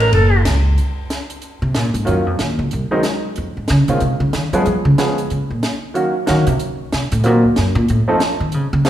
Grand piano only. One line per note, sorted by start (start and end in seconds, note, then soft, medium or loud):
2.05 2.24 D#3 medium
2.05 2.24 F#3 medium
2.05 2.24 A#3 soft
2.05 2.24 C#4 soft
2.05 2.25 F4 medium
2.91 3.02 D#3 medium
2.91 3.02 F#3 medium
2.91 3.02 G#3 medium
2.91 3.02 C4 medium
2.91 3.02 D#4 medium
3.89 3.99 D#3 soft
3.89 3.99 G#3 soft
3.89 3.99 C4 soft
3.89 4.00 C#4 soft
3.89 4.00 F4 medium
4.53 4.64 F3 medium
4.53 4.64 G#3 medium
4.53 4.64 B3 medium
4.53 4.64 C#4 medium
4.53 4.64 G#4 medium
4.98 5.15 F3 medium
4.98 5.16 G#3 soft
4.98 5.16 B3 soft
4.98 5.16 C#4 soft
4.98 5.16 G#4 medium
5.94 6.12 D#3 soft
5.94 6.12 F#3 soft
5.94 6.13 A#3 soft
5.94 6.12 C#4 soft
5.94 6.12 F#4 medium
6.26 6.44 D#3 medium
6.26 6.44 F#3 soft
6.26 6.45 A#3 soft
6.26 6.45 C#4 medium
6.26 6.45 F#4 medium
7.24 7.41 D#3 medium
7.24 7.41 F#3 soft
7.24 7.41 A#3 soft
7.24 7.41 C4 soft
7.24 7.42 F#4 medium
8.08 8.19 F3 medium
8.08 8.19 A3 medium
8.08 8.19 C4 medium
8.08 8.19 D#4 medium
8.08 8.19 A4 medium
8.85 8.90 F3 soft
8.85 8.90 A#3 medium
8.85 8.90 C4 medium
8.85 8.90 C#4 soft
8.85 8.90 G#4 medium